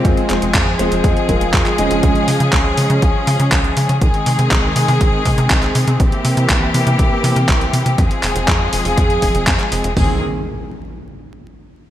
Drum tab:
HH |xxxxx-xxxxxxxxxx|xxoxx-oxx-oxxxox|xxoxx-oox-oxxxox|xxoxx-oxx-oxxxox|
CP |--x-x-------xx--|----x-------x---|----x-------xx--|----x-------x---|
FT |----------------|----------------|----------------|----------------|
BD |o---o---o-o-o---|o---o---o---o---|o---o---o-o-o---|o---o---o---o---|

HH |xxoxx-ooxxoxxxox|o---------------|
CP |--x-x-------xx--|----------------|
FT |----------------|o---------------|
BD |o---o---o-o-o---|o---------------|